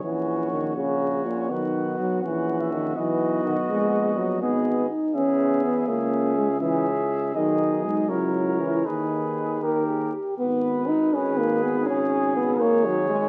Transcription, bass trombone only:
\new Staff \with { instrumentName = "Bass trombone" } { \clef bass \time 6/8 \key b \major \tempo 4. = 82 ais,,2. | b,,4. ais,,4. | b,,4. ais,,4. | \key gis \minor gis,,4 r8 e,4. |
cis,2. | b,,4. cis,4. | dis,4. dis,4 r8 | gis,,2.~ |
gis,,2. | }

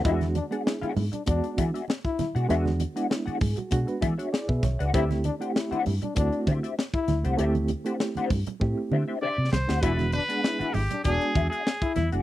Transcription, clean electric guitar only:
\new Staff \with { instrumentName = "Clean electric guitar" } { \time 4/4 \key e \mixolydian \tempo 4 = 98 <d' fis' gis' e''>16 r8 <d' fis' gis' fis''>16 r16 <d' fis' gis' fis''>16 r4 <d' fis' gis' e''>16 <d' fis' gis' e''>16 r8. <d' fis' gis' fis''>16 | <d' fis' gis' e''>16 r8 <d' fis' gis' fis''>16 r16 <d' fis' gis' fis''>16 r4 <d' fis' gis' e''>16 <d' fis' gis' e''>16 r8. <d' fis' gis' fis''>16 | <d' g' c'' e''>16 r8 <d' g' c'' fis''>16 r16 <d' g' c'' fis''>16 r4 <d' g' c'' e''>16 <d' g' c'' e''>16 r8. <d' g' c'' fis''>16 | <d' g' c'' e''>16 r8 <d' g' c'' fis''>16 r16 <d' g' c'' fis''>16 r4 <d' g' c'' e''>16 <d' g' c'' e''>16 <d' g' c'' e''>16 r8 <d' g' c'' fis''>16 |
<d' fis' gis' e''>16 r8 <d' fis' gis' fis''>16 r16 <d' fis' gis' fis''>16 r4 <d' fis' gis' e''>16 <d' fis' gis' e''>16 r8. <d' fis' gis' fis''>16 | }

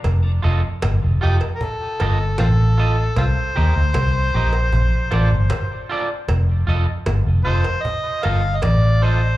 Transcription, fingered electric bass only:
\new Staff \with { instrumentName = "Fingered electric bass" } { \clef bass \time 4/4 \key f \mixolydian \tempo 4 = 77 f,,8 f,,16 r16 g,,16 f,,16 f,,16 r8. g,,8 a,,4 | c,16 r16 ees,16 d,16 c,8 bes,,8 bes,,16 r16 a,,16 g,,16 r4 | f,,8 f,,16 r16 g,,16 f,,16 f,,16 r8. g,,8 a,,4 | }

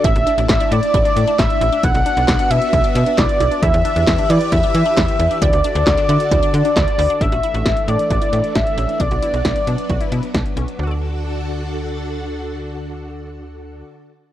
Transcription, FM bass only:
\new Staff \with { instrumentName = "FM bass" } { \clef bass \time 4/4 \key d \major \tempo 4 = 134 a,,16 a,,16 r16 a,,16 a,,16 r16 a,16 r16 a,,16 r16 a,16 r16 a,,16 r16 a,,16 r16 | b,,16 b,,16 r16 b,,16 b,,16 r16 b,16 r16 b,,16 r16 b,16 r16 b,,16 r16 b,,16 r16 | e,16 e,16 r16 e,16 e,16 r16 e16 r16 e,16 r16 e16 r16 e,16 r16 e,16 r16 | d,16 d,16 r16 d,16 d,16 r16 d16 r16 d,16 r16 d16 r16 d,16 r16 d,16 r16 |
a,,16 a,,16 r16 a,,16 a,,16 r16 a,16 r16 a,,16 r16 a,16 r16 a,,16 r16 a,,16 r16 | b,,16 b,,16 r16 b,,16 b,,16 r16 b,16 r16 b,,16 r16 b,16 r16 b,,16 r16 b,,16 r16 | d,1~ | d,1 | }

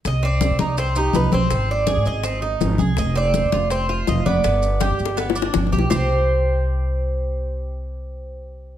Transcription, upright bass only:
\new Staff \with { instrumentName = "Upright bass" } { \clef bass \time 4/4 \key c \minor \tempo 4 = 164 c,4~ c,16 c16 c,4. c,8 b,,8 | aes,,4~ aes,,16 aes,16 aes,,4. aes,,8 c,8 | f,,4~ f,,16 f,16 f,,4. f,,8 f,,8 | g,,4~ g,,16 g,16 g,,4. g,,8 b,,8 |
c,1~ | c,1 | }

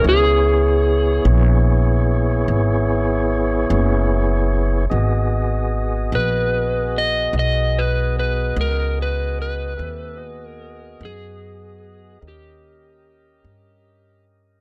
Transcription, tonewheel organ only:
\new Staff \with { instrumentName = "Tonewheel organ" } { \time 12/8 \key gis \minor \tempo 4. = 49 <b e' gis' cis''>1. | <b fis' gis' dis''>1. | <bis g' a' e''>8 <b fis' gis' dis''>2~ <b fis' gis' dis''>8 <cis' g' ais' dis''>2. | }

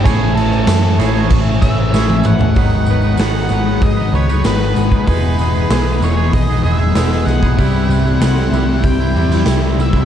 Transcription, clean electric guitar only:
\new Staff \with { instrumentName = "Clean electric guitar" } { \time 4/4 \key gis \phrygian \tempo 4 = 96 <a cis' e' gis' cis''>4. <a cis' e' gis' cis''>4. <a cis' e' gis' cis''>4 | <gis, dis fis b dis' b'>8 <fis b dis' b'>16 <fis b dis' b'>16 <gis, dis fis b dis' b'>8 <fis b dis' b'>16 <fis b dis' b'>8 <fis b dis' b'>16 <fis b dis' b'>16 <fis b dis' b'>16 <gis, dis fis b dis' b'>16 <fis b dis' b'>8 <fis b dis' b'>16 | <e gis b dis' gis'>8 <gis b dis' gis'>16 <b dis' gis'>16 <e gis b dis' gis'>8 <gis b dis' gis'>16 <b dis' gis'>8 <b dis' gis'>16 <gis b dis' gis'>16 <b dis' gis'>16 <e gis b dis' gis'>16 <b dis' gis'>8 <b dis' gis'>16 | <c g e'>8 <c g e'>16 <g e'>16 <c g e'>8 <c g e'>16 <g e'>8 <g e'>16 <c g e'>16 <g e'>16 <c g e'>16 <g e'>8 <g b e'>16 | }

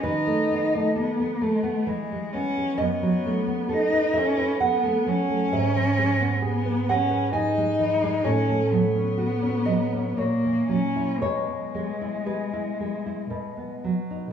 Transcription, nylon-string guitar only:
\new Staff \with { instrumentName = "Nylon-string guitar" } { \time 3/4 \key e \major \tempo 4 = 65 << { b'2. | dis''4. e''8 fis''4 | e''4. fis''8 gis''4 | cis''4. dis''8 cis''4 |
cis''4 b'4 r4 | } \\ { dis16 a16 b16 a16 a'16 b16 a16 b16 e16 gis16 b16 gis16 | fis,16 fis16 a16 b16 a'16 b'16 a'16 b'16 a'16 a16 fis16 a16 | gis,16 e16 gis16 b16 gis'16 b'16 gis'16 b'16 gis'16 gis16 e16 gis16 | a,16 a16 fis16 cis'16 fis'16 cis'16 fis16 cis'16 ais,16 e16 fis16 e'16 |
b,16 b16 gis16 e'16 gis'16 e'16 gis16 e'16 b,16 b16 fis16 dis'16 | } >> }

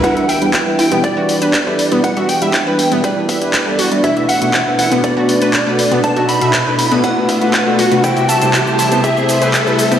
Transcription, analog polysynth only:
\new Staff \with { instrumentName = "Analog polysynth" } { \time 4/4 \key e \minor \tempo 4 = 120 <g d' e' b'>16 <g d' e' e''>16 r16 <g d' e' b'>16 r16 <g d' e' b'>16 r16 <g d' e' b'>16 <g d' e' b'>16 <g d' e' b'>8 <g d' e' b'>16 r16 <g d' e' a'>16 r16 <g d' e' b'>16 | <g d' e' b'>16 <g d' e' e''>16 r16 <g d' e' b'>16 r16 <g d' e' b'>16 r16 <g d' e' b'>16 <g d' e' b'>16 <g d' e' b'>8 <g d' e' b'>16 r16 <g d' e' a'>16 r16 <g d' e' b'>16 | <b, a d' fis' b'>16 <b, a d' fis' e''>16 r16 <b, a d' fis' b'>16 r16 <b, a d' fis' b'>16 r16 <b, a d' fis' b'>16 <b, a d' fis' b'>16 <b, a d' fis' b'>8 <b, a d' fis' b'>16 r16 <b, a d' fis' a'>16 r16 <b, a d' fis' b'>16 | <b, a d' fis' b'>16 <b, a d' fis' e''>16 r16 <b, a d' fis' b'>16 r16 <b, a d' fis' b'>16 r16 <b, a d' fis' b'>16 <b, a d' fis' b'>16 <b, a d' fis' b'>8 <b, a d' fis' b'>16 r16 <b, a d' fis' a'>16 r16 <c a d' fis' b'>16 |
<c a e' g' c''>16 <c a e' g' e''>16 r16 <c a e' g' c''>16 r16 <c a e' g' c''>16 r16 <c a e' g' c''>16 <c a e' g' c''>16 <c a e' g' c''>8 <c a e' g' c''>16 r16 <c a e' g' a'>16 r16 <c a e' g' c''>16 | }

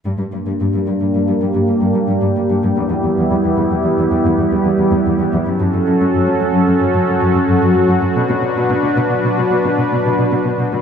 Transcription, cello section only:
\new Staff \with { instrumentName = "Cello section" } { \clef bass \time 5/4 \key g \lydian \tempo 4 = 111 g,16 g,16 g,16 g,16 g,16 g,16 g,16 g,16 g,16 g,16 g,16 g,16 g,16 g,16 g,16 g,16 g,16 g,16 g,16 g,16 | e,16 e,16 e,16 e,16 e,16 e,16 e,16 e,16 e,16 e,16 e,16 e,16 e,16 e,16 e,16 e,16 e,16 e,16 e,16 e,16 | fis,16 fis,16 fis,16 fis,16 fis,16 fis,16 fis,16 fis,16 fis,16 fis,16 fis,16 fis,16 fis,16 fis,16 fis,16 fis,16 fis,16 fis,16 fis,16 fis,16 | b,16 b,16 b,16 b,16 b,16 b,16 b,16 b,16 b,16 b,16 b,16 b,16 b,16 b,16 b,16 b,16 b,16 b,16 b,16 b,16 | }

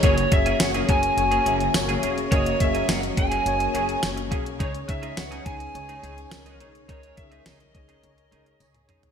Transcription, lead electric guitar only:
\new Staff \with { instrumentName = "Lead electric guitar" } { \time 4/4 \key cis \dorian \tempo 4 = 105 cis''8 e''8 fis''8 gis''2 r8 | cis''8 e''8 fis''8 gis''2 r8 | cis''8 e''8 fis''8 gis''2 r8 | cis''8 e''8 dis''8 dis''2 r8 | }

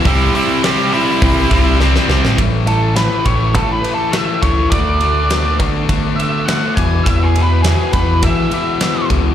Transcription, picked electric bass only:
\new Staff \with { instrumentName = "Picked electric bass" } { \clef bass \time 4/4 \key e \mixolydian \tempo 4 = 103 c,8 r4. c,8 c,4 c,16 a,,16 | a,,4. a,,8 a,8 r4 cis,8 | d,4. d8 d4. e,8 | e,4. e,8 e8 r4 cis,8 | }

